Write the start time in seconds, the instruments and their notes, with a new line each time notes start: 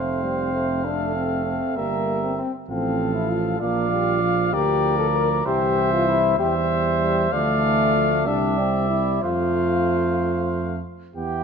Already playing: tuba F1, trombone A3, french horn C4, flugelhorn C5, cornet F5
0.23 trombone G3
0.53 trombone A3
0.84 trombone A3, french horn D4, flugelhorn A4
1.15 french horn C4
1.45 french horn C4
1.76 tuba G1, trombone G3, french horn A#3, flugelhorn A#4, cornet E5
2.22 french horn C4
2.38 french horn C4
2.68 tuba A1, trombone F3, french horn C4, flugelhorn A4, cornet F5
3.14 french horn E4
3.29 french horn F4
3.60 tuba A#1, trombone A#3, french horn F4, flugelhorn D5, cornet F5
3.92 trombone G3
4.22 trombone F3
4.53 tuba D2, french horn G4, flugelhorn A#4, cornet D5
4.99 french horn A4
5.15 french horn A#4
5.46 tuba C2, trombone E3, french horn G4, flugelhorn C5, cornet E5
5.93 french horn F4
6.08 french horn E4
6.38 tuba E2, trombone G3, french horn G4, flugelhorn C5, cornet E5
7.02 french horn G3
7.32 tuba D2, trombone F3, french horn A3, flugelhorn D5, cornet F5
7.64 trombone E3
7.95 trombone F3
8.26 tuba C2, trombone G3, french horn D4, flugelhorn D5, cornet E5
8.59 french horn C4
8.90 french horn E4
9.22 tuba F2, trombone A3, french horn F4, flugelhorn C5, cornet F5
11.15 tuba E2, trombone B3, french horn E4, flugelhorn G4, cornet G5